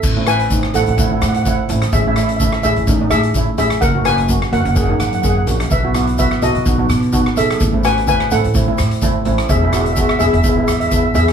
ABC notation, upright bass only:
X:1
M:4/4
L:1/16
Q:"Swing 16ths" 1/4=127
K:Alyd
V:1 name="Upright bass" clef=bass
A,,,6 A,,, A,,,3 A,,4 A,,,2 | A,,,6 A,,, A,,,3 A,,4 A,,,2 | F,,,6 F,,, F,,,3 F,,4 ^A,,,2 | B,,,6 B,,, B,,, B,,,2 B,,4 B,,,2 |
A,,,6 A,,, A,,,3 A,,4 A,,,2 | E,,,6 E,,, E,,,3 E,,4 E,,2 |]